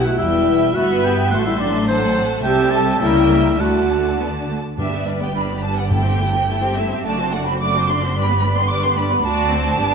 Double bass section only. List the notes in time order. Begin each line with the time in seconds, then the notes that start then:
0.19 E1
0.77 G1
1.33 A1
2.43 C2
3.00 C#2
3.61 D2
4.79 G1
7.03 F#1
8.16 G1
9.25 D2
9.79 G1